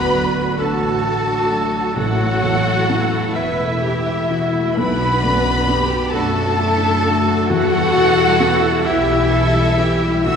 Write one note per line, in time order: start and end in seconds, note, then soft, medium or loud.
0.00 0.37 D2 medium
0.00 1.93 D2 medium
0.00 0.41 A2 medium
0.00 2.01 D3 medium
0.00 1.50 F#3 soft
0.00 0.55 B3 loud
0.00 0.14 D4 medium
0.00 0.56 D4 medium
0.00 1.27 D4 medium
0.00 1.93 F#4 medium
0.00 0.35 A4 soft
0.00 0.55 B4 loud
0.00 0.61 B4 medium
0.00 0.56 B5 loud
0.00 0.61 B5 medium
0.13 0.87 F#3 soft
0.13 0.37 A3 medium
0.13 0.58 F#4 medium
0.36 0.60 F#3 medium
0.36 0.81 A4 soft
0.58 1.74 A1 medium
0.58 0.82 D3 medium
0.58 1.96 A3 medium
0.58 1.33 D4 soft
0.58 1.94 F#4 medium
0.58 1.04 F#4 medium
0.58 1.97 A4 medium
0.58 1.95 A4 medium
0.58 1.96 A5 medium
0.58 1.97 A5 medium
0.81 1.05 F#3 medium
0.81 2.88 A4 medium
1.05 1.28 A3 medium
1.05 2.01 F#4 medium
1.05 1.79 A4 medium
1.28 1.51 D4 medium
1.28 1.73 D4 medium
1.51 2.01 F#3 medium
1.51 1.74 A3 medium
1.51 1.97 D4 medium
1.73 1.97 F#3 medium
1.73 2.01 D4 medium
1.95 3.12 A1 medium
1.95 4.74 A1 medium
1.95 3.31 A2 medium
1.95 4.81 A2 medium
1.95 2.18 E3 medium
1.95 3.32 F#3 loud
1.95 4.73 E4 medium
1.95 3.35 F#4 loud
1.95 3.37 F#4 loud
1.95 3.33 A4 medium
1.95 3.32 F#5 medium
1.95 3.33 F#5 loud
2.20 4.29 E3 medium
2.20 2.43 A3 medium
2.43 3.17 E2 medium
2.43 4.05 B3 medium
2.43 2.66 B3 medium
2.66 2.89 A3 medium
2.66 3.11 E4 medium
2.89 3.12 E3 medium
2.89 3.64 B3 soft
2.89 3.34 A4 medium
3.12 3.36 A3 medium
3.12 3.57 E4 medium
3.34 4.53 E1 medium
3.34 4.77 E3 medium
3.34 3.60 B3 medium
3.34 4.74 E4 medium
3.34 4.80 E4 medium
3.34 4.11 E4 medium
3.34 3.81 A4 medium
3.34 3.82 B4 medium
3.34 4.76 E5 medium
3.34 4.78 E5 medium
3.58 3.83 A3 medium
3.58 4.81 E4 medium
3.82 4.06 E3 medium
3.82 4.30 G4 medium
3.82 5.67 A4 medium
3.82 4.59 A4 medium
4.06 4.30 A3 medium
4.06 4.52 B3 medium
4.30 4.81 E3 medium
4.30 4.54 B3 medium
4.30 4.77 E4 medium
4.30 4.77 F#4 medium
4.54 4.78 A3 medium
4.54 5.21 B3 medium
4.75 5.91 B1 medium
4.75 7.47 B1 medium
4.75 7.55 B2 medium
4.75 4.99 D3 medium
4.75 5.97 B3 loud
4.75 7.47 D4 medium
4.75 5.22 E4 medium
4.75 6.11 B4 loud
4.75 5.87 B4 medium
4.75 6.11 B5 loud
4.75 5.86 B5 loud
5.00 5.23 F#3 medium
5.00 7.55 A3 medium
5.23 5.96 F#2 medium
5.23 5.46 A3 medium
5.23 6.81 B3 medium
5.23 5.69 D4 medium
5.44 5.68 F#3 medium
5.44 5.89 D4 medium
5.67 5.91 D3 medium
5.67 6.42 B3 medium
5.67 6.14 G4 medium
5.67 6.12 A4 medium
5.90 6.14 F#3 medium
5.90 6.35 D4 medium
6.13 7.28 F#1 medium
6.13 7.48 A3 loud
6.13 6.37 A3 medium
6.13 6.88 D4 medium
6.13 6.60 F#4 medium
6.13 7.46 A4 loud
6.13 6.59 A4 medium
6.13 7.51 A4 loud
6.13 7.46 A5 medium
6.13 7.51 A5 loud
6.36 6.61 F#3 medium
6.36 7.54 D4 medium
6.60 6.84 D3 medium
6.60 7.06 E4 medium
6.60 7.33 A4 medium
6.82 7.06 F#3 medium
6.82 7.27 B3 medium
7.05 7.55 F#3 medium
7.05 7.28 A3 medium
7.05 7.51 D4 medium
7.05 7.50 F#4 medium
7.27 7.50 F#3 medium
7.27 7.72 B3 medium
7.49 10.22 E2 medium
7.49 8.62 E2 medium
7.49 10.30 E3 medium
7.49 7.72 E3 medium
7.49 10.26 E4 medium
7.49 8.87 F#4 loud
7.49 8.85 F#4 loud
7.49 8.82 A4 loud
7.49 8.84 F#5 loud
7.49 8.87 F#5 loud
7.72 7.95 G3 medium
7.72 9.79 B3 medium
7.94 8.67 B2 medium
7.94 8.17 E3 medium
7.94 9.55 E4 medium
8.16 8.40 G3 medium
8.16 10.31 G3 medium
8.40 8.63 E3 medium
8.40 9.12 B3 medium
8.40 8.85 B4 medium
8.62 8.85 G3 medium
8.62 9.07 G4 medium
8.84 10.03 B1 loud
8.84 9.08 E3 medium
8.84 10.27 E3 medium
8.84 9.60 E4 medium
8.84 10.24 E4 medium
8.84 10.26 E4 medium
8.84 9.31 G4 medium
8.84 9.30 B4 medium
8.84 10.26 E5 loud
8.84 10.28 E5 medium
9.08 9.31 G3 medium
9.08 10.31 G4 medium
9.31 9.55 E3 medium
9.31 10.07 G4 medium
9.31 9.79 A4 loud
9.31 10.31 B4 medium
9.55 9.79 G3 medium
9.55 10.03 E4 medium
9.79 10.03 E3 medium
9.79 10.31 B3 medium
9.79 10.27 E4 medium
9.79 10.27 G4 medium
10.04 10.27 G3 medium
10.04 10.31 E4 medium
10.25 10.36 D2 medium
10.25 10.36 D3 medium
10.25 10.36 A3 loud
10.25 10.36 E4 loud
10.25 10.36 F#4 loud
10.25 10.36 F#4 medium
10.25 10.36 E5 loud
10.25 10.36 E6 loud